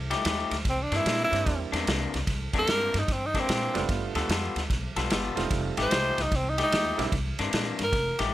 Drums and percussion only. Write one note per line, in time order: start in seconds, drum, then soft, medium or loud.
0.11 snare soft
0.11 ride medium
0.25 snare loud
0.25 ride medium
0.51 snare soft
0.51 ride medium
0.65 kick loud
0.65 snare soft
0.65 ride medium
0.92 snare soft
0.92 ride medium
1.06 snare loud
1.06 ride medium
1.33 snare soft
1.33 ride medium
1.46 kick loud
1.46 snare soft
1.46 ride medium
1.73 snare soft
1.73 ride medium
1.87 snare loud
1.87 ride medium
2.14 snare soft
2.14 ride medium
2.27 kick loud
2.27 snare soft
2.27 ride medium
2.53 kick medium
2.53 snare soft
2.53 ride medium
2.67 snare loud
2.67 ride medium
2.94 snare soft
2.94 ride medium
3.08 kick loud
3.08 snare soft
3.08 ride medium
3.34 kick medium
3.34 snare soft
3.34 ride medium
3.49 snare loud
3.49 ride medium
3.75 snare soft
3.75 ride medium
3.89 kick loud
3.89 snare soft
3.89 ride medium
4.15 snare soft
4.15 ride medium
4.29 snare loud
4.29 ride medium
4.56 snare soft
4.56 ride medium
4.70 kick loud
4.70 snare soft
4.70 ride medium
4.96 snare soft
4.96 ride medium
5.10 snare loud
5.10 ride medium
5.37 snare soft
5.37 ride medium
5.51 kick loud
5.51 snare soft
5.51 ride medium
5.77 snare soft
5.77 ride medium
5.91 snare loud
5.91 ride medium
6.18 snare soft
6.18 ride medium
6.32 kick loud
6.32 snare soft
6.32 ride medium
6.58 snare soft
6.58 ride medium
6.72 snare loud
6.72 ride medium
6.99 snare soft
6.99 ride medium
7.12 kick loud
7.12 snare soft
7.12 ride medium
7.39 snare soft
7.39 ride medium
7.53 snare loud
7.53 ride medium
7.79 snare soft
7.79 ride medium
7.93 kick loud
7.93 snare soft
7.93 ride medium
8.19 snare soft
8.19 ride medium